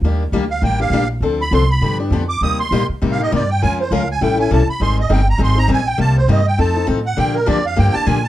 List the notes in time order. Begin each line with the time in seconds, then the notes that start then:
0.01 D#2 D#3 G3 A#3 D4 G4
0.32 D2 D#3 G3 A#3 D4 G4
0.51 F5
0.62 A1 D#3 G3 A#3 D4 G4 G5
0.80 A#3 D4 G4 F5
0.90 A#1 D#3 G3 A#3 D4 G4
1.20 D2 D3 F3 C4 D4 A4
1.41 B5
1.51 C2 D3 F3 C4 D4 A4 C6
1.70 B5
1.81 G2 D3 F3 B3 D4 G4
2.00 B3 D4 G4
2.10 F2 D3 F3 B3 D4 G4
2.29 D6
2.41 D#2 C3 G3 A#3 D#4 G4 D#6
2.59 C6
2.71 A#2 C3 G3 A#3 D#4 G4
2.89 muted upright bass stroke
3.02 A2 C3 G3 A#3 D#4 G4
3.12 F5
3.19 A#3 D#4 G4
3.23 D#5
3.32 G2 C3 G3 A#3 D#4 G4 D5
3.50 G5
3.62 F2 F3 G#3 C#4 F4 A#4 G#5
3.81 C5
3.91 C#2 F3 G#3 C#4 F4 A#4 F5
4.11 G#5
4.21 A1 E3 G3 C#4 E4 A4 G5
4.38 C#4 E4 A4 G#5
4.51 B1 E3 G3 C#4 E4 A4 A5
4.67 B5, muted upright bass stroke
4.80 G#1 D#3 G3 C4 D#4 G#4 C6
5.00 D#5
5.09 G1 D#3 G3 C4 D#4 G#4 G5
5.30 A#5
5.38 G#1 D#3 G3 C4 D#4 G#4
5.43 C6
5.55 C4 D#4 G#4 A#5
5.68 A#1 D#3 G3 C4 D#4 G#4
5.73 G#5
5.87 G5
5.98 C2 C3 G3 A#3 D#4 G4 A5
6.18 C5
6.28 G2 C3 G3 A#3 D#4 G4 D#5
6.48 G5
6.58 F2 F3 C4 D#4 A4 A5
6.75 C4 D#4 A4
6.87 A2 F3 C4 D#4 A4
7.06 F#5
7.17 A#2 D3 F3 A#3 D4 G4 G5
7.35 A#4
7.46 F2 D3 F3 A#3 D4 G4 D5
7.66 F5
7.76 G2 D3 F3 A#3 D4 G4 G5
7.94 A#3 D4 G4 A5, muted upright bass stroke
8.06 A#2 D3 F3 A#3 D4 G4 G#5
8.24 A5